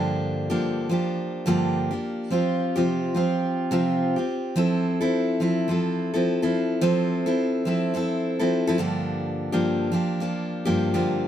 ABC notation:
X:1
M:4/4
L:1/16
Q:"Swing 16ths" 1/4=106
K:F
V:1 name="Steel-string acoustic guitar"
[G,,D,F,B,DG]3 [G,,D,F,B,DG]3 [F,B,DG]4 [G,,D,F,B,DG]3 [F,B,DG]3 | [F,CFG]3 [C,F,CFG]3 [F,CFG]4 [C,F,CFG]3 [CFG]3 | [F,CEA]3 [F,CEA]3 [F,CEA]2 [F,CEA]3 [F,CEA]2 [F,CEA]3 | [F,CEA]3 [F,CEA]3 [F,CEA]2 [F,CEA]3 [F,CEA]2 [F,CEA] [G,,D,F,B,DG]2- |
[G,,D,F,B,DG]3 [G,,D,F,B,DG]3 [F,B,DG]2 [F,B,DG]3 [G,,D,F,B,DG]2 [G,,D,F,B,DG]3 |]